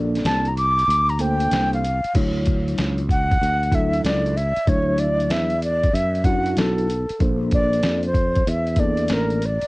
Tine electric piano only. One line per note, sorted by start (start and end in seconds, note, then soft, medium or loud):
0.00 0.47 A#3 medium
0.00 0.47 D4 medium
0.00 0.48 A4 medium
0.00 0.48 D5 loud
1.19 1.81 A#3 medium
1.19 1.81 D4 medium
1.19 1.82 A4 medium
1.19 1.82 C5 medium
2.14 3.00 F#3 medium
2.14 3.00 D4 medium
2.14 3.00 E4 medium
2.14 3.00 C#5 medium
3.71 4.33 F#3 medium
3.71 4.34 D4 medium
3.71 4.34 E4 medium
3.71 4.34 A4 medium
4.67 5.52 F#3 medium
4.67 5.52 D4 medium
4.67 5.53 E4 medium
4.67 5.53 E5 medium
6.25 6.86 F#3 medium
6.25 6.87 D4 medium
6.25 6.87 E4 medium
6.25 6.87 F#4 medium
7.20 8.05 A#3 medium
7.20 8.05 D4 medium
7.20 8.06 A4 medium
7.20 8.06 C5 medium
8.78 9.39 A#3 medium
8.78 9.40 D4 medium
8.78 9.40 A4 medium
8.78 9.40 D5 medium